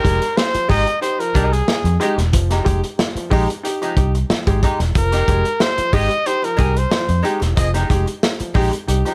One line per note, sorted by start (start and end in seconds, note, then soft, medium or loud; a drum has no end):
0.00 0.17 G#3 medium
0.00 0.38 A#4 loud
0.04 0.18 F1 medium
0.04 0.17 D#4 medium
0.04 0.18 G4 medium
0.04 muted hollow-body jazz guitar stroke soft
0.04 kick medium
0.04 closed hi-hat medium
0.22 muted hollow-body jazz guitar stroke soft
0.22 closed hi-hat medium
0.36 0.44 D#4 soft
0.36 0.44 G4 soft
0.36 0.69 C5 medium
0.36 snare loud
0.53 0.65 F3 medium
0.53 muted fingered electric bass stroke soft
0.53 muted hollow-body jazz guitar stroke soft
0.53 closed hi-hat medium
0.68 0.83 G#1 medium
0.68 0.82 G#3 medium
0.68 0.86 G#3 medium
0.68 0.82 D#4 medium
0.68 0.87 D#4 loud
0.68 0.83 G4 medium
0.68 0.86 G4 loud
0.68 1.00 D#5 medium
0.68 kick medium
0.68 open hi-hat medium
0.87 muted hollow-body jazz guitar stroke soft
0.87 closed hi-hat medium
1.01 1.15 D#4 medium
1.01 1.15 G4 medium
1.01 1.21 C5 medium
1.01 closed hi-hat medium
1.19 1.31 F3 medium
1.19 1.54 A#4 medium
1.19 muted hollow-body jazz guitar stroke soft
1.19 closed hi-hat medium
1.34 1.61 C2 medium
1.34 1.56 G#3 medium
1.34 1.48 D#4 medium
1.34 1.53 D#4 medium
1.34 1.48 G4 medium
1.34 1.52 G#4 medium
1.34 kick medium
1.34 closed hi-hat medium
1.52 2.01 G#4 medium
1.52 muted hollow-body jazz guitar stroke soft
1.52 closed hi-hat medium
1.68 muted hollow-body jazz guitar stroke soft
1.68 snare loud
1.84 1.97 F2 loud
1.84 muted hollow-body jazz guitar stroke medium
1.84 closed hi-hat medium
2.00 2.13 G#3 medium
2.00 2.18 G#3 medium
2.00 2.13 D#4 medium
2.00 2.18 D#4 medium
2.00 2.14 G4 medium
2.00 2.18 G4 medium
2.00 closed hi-hat medium
2.18 2.33 E1 medium
2.18 muted hollow-body jazz guitar stroke soft
2.18 snare soft
2.18 closed hi-hat medium
2.33 2.59 F1 loud
2.33 2.46 F3 medium
2.33 muted hollow-body jazz guitar stroke soft
2.33 kick loud
2.33 closed hi-hat loud
2.50 2.65 G#3 medium
2.50 2.57 D#4 soft
2.50 2.66 D#4 medium
2.50 2.56 G4 soft
2.50 2.66 G4 medium
2.50 snare soft
2.50 closed hi-hat medium
2.64 2.80 F1 loud
2.64 2.78 G#3 medium
2.64 2.78 D#4 medium
2.64 2.79 G4 medium
2.64 muted hollow-body jazz guitar stroke soft
2.64 kick medium
2.64 closed hi-hat medium
2.84 muted hollow-body jazz guitar stroke soft
2.84 closed hi-hat medium
2.98 3.06 D#4 soft
2.98 3.05 G4 soft
2.98 snare loud
3.15 3.27 F3 medium
3.15 muted fingered electric bass stroke soft
3.15 muted hollow-body jazz guitar stroke soft
3.15 closed hi-hat medium
3.30 3.45 A#1 medium
3.30 3.44 G#3 medium
3.30 3.48 G#3 medium
3.30 3.44 D#4 medium
3.30 3.49 D#4 medium
3.30 3.44 G4 loud
3.30 3.47 G4 medium
3.30 kick loud
3.30 open hi-hat medium
3.49 muted hollow-body jazz guitar stroke soft
3.49 closed hi-hat medium
3.63 3.77 D#4 medium
3.63 3.77 G4 medium
3.63 muted hollow-body jazz guitar stroke soft
3.63 closed hi-hat medium
3.81 3.93 F3 medium
3.81 3.96 G#3 medium
3.81 3.96 D#4 medium
3.81 3.97 G4 medium
3.81 closed hi-hat soft
3.96 4.22 C2 medium
3.96 4.10 D#4 medium
3.96 4.10 G4 medium
3.96 muted hollow-body jazz guitar stroke soft
3.96 kick medium
3.96 closed hi-hat medium
4.15 muted hollow-body jazz guitar stroke soft
4.15 closed hi-hat soft
4.30 4.43 F3 medium
4.30 muted fingered electric bass stroke medium
4.30 muted hollow-body jazz guitar stroke soft
4.30 snare loud
4.47 4.59 G#1 medium
4.47 4.59 G#3 medium
4.47 4.59 D#4 medium
4.47 4.59 G4 medium
4.47 muted hollow-body jazz guitar stroke soft
4.47 kick medium
4.47 closed hi-hat medium
4.62 4.79 G#3 medium
4.62 4.69 D#4 soft
4.62 4.80 D#4 medium
4.62 4.70 G4 soft
4.62 4.79 G4 medium
4.62 kick medium
4.62 closed hi-hat medium
4.79 4.92 E1 medium
4.79 muted hollow-body jazz guitar stroke medium
4.79 snare soft
4.79 closed hi-hat medium
4.95 5.21 F1 loud
4.95 5.09 F3 medium
4.95 5.63 A#4 loud
4.95 muted hollow-body jazz guitar stroke soft
4.95 kick loud
4.95 closed hi-hat medium
5.12 5.26 G#3 medium
5.12 5.19 D#4 soft
5.12 5.27 D#4 medium
5.12 5.27 G4 medium
5.12 5.19 G4 soft
5.12 snare soft
5.12 closed hi-hat medium
5.27 5.42 F1 loud
5.27 5.42 G#3 medium
5.27 5.41 D#4 medium
5.27 5.42 G4 medium
5.27 muted hollow-body jazz guitar stroke soft
5.27 kick medium
5.27 closed hi-hat medium
5.44 muted hollow-body jazz guitar stroke soft
5.44 closed hi-hat medium
5.60 5.68 D#4 soft
5.60 5.68 G4 soft
5.60 5.95 C5 medium
5.60 snare loud
5.77 5.90 F3 medium
5.77 muted hollow-body jazz guitar stroke soft
5.77 muted fingered electric bass stroke soft
5.77 closed hi-hat medium
5.93 6.07 G#1 medium
5.93 6.10 G#3 medium
5.93 6.06 G#3 medium
5.93 6.06 D#4 medium
5.93 6.09 D#4 medium
5.93 6.07 G4 loud
5.93 6.08 G4 loud
5.93 6.28 D#5 loud
5.93 kick medium
5.93 open hi-hat medium
6.09 muted hollow-body jazz guitar stroke soft
6.09 closed hi-hat medium
6.26 6.39 D#4 medium
6.26 6.40 G4 medium
6.26 6.46 C5 medium
6.26 closed hi-hat medium
6.42 6.55 F3 medium
6.42 6.79 A#4 medium
6.42 muted hollow-body jazz guitar stroke medium
6.42 closed hi-hat medium
6.57 6.84 C2 medium
6.57 6.75 G#3 medium
6.57 6.75 D#4 medium
6.57 6.72 D#4 medium
6.57 6.72 G4 medium
6.57 6.75 G#4 loud
6.57 kick medium
6.57 closed hi-hat medium
6.75 7.25 C5 medium
6.75 muted hollow-body jazz guitar stroke soft
6.75 closed hi-hat medium
6.90 7.05 F3 medium
6.90 muted hollow-body jazz guitar stroke soft
6.90 snare loud
7.08 7.21 F2 loud
7.08 muted hollow-body jazz guitar stroke soft
7.08 closed hi-hat medium
7.23 7.40 G#3 medium
7.23 7.37 G#3 medium
7.23 7.41 D#4 medium
7.23 7.38 D#4 medium
7.23 7.39 G4 medium
7.23 7.38 G4 medium
7.23 closed hi-hat medium
7.40 7.54 E1 medium
7.40 7.48 D#4 soft
7.40 7.48 G4 soft
7.40 muted hollow-body jazz guitar stroke medium
7.40 snare soft
7.40 closed hi-hat medium
7.55 7.83 F1 loud
7.55 7.70 F3 medium
7.55 7.68 C4 loud
7.55 7.68 G#4 loud
7.55 7.68 D#5 loud
7.55 muted hollow-body jazz guitar stroke soft
7.55 kick loud
7.55 closed hi-hat loud
7.74 7.88 G#3 medium
7.74 7.89 D#4 medium
7.74 7.81 D#4 soft
7.74 7.89 G4 medium
7.74 7.81 G4 soft
7.74 snare soft
7.74 closed hi-hat medium
7.89 8.04 F1 loud
7.89 8.03 G#3 medium
7.89 8.03 D#4 medium
7.89 8.03 G4 medium
7.89 muted hollow-body jazz guitar stroke soft
7.89 kick medium
7.89 closed hi-hat medium
8.06 muted hollow-body jazz guitar stroke soft
8.06 closed hi-hat medium
8.23 8.30 D#4 soft
8.23 8.30 G4 soft
8.23 snare loud
8.40 8.51 F3 medium
8.40 muted hollow-body jazz guitar stroke soft
8.40 muted fingered electric bass stroke soft
8.40 closed hi-hat medium
8.54 8.69 A#1 medium
8.54 8.72 G#3 medium
8.54 8.68 G#3 medium
8.54 8.68 D#4 medium
8.54 8.72 D#4 medium
8.54 8.68 G4 loud
8.54 8.70 G4 medium
8.54 kick medium
8.54 open hi-hat medium
8.72 muted hollow-body jazz guitar stroke soft
8.72 closed hi-hat medium
8.88 9.02 C2 medium
8.88 9.01 D#4 medium
8.88 9.01 G4 medium
8.88 muted hollow-body jazz guitar stroke soft
8.88 closed hi-hat medium
9.05 9.14 F3 medium
9.05 9.14 G#3 medium
9.05 9.14 D#4 medium
9.05 9.14 G4 medium
9.05 closed hi-hat soft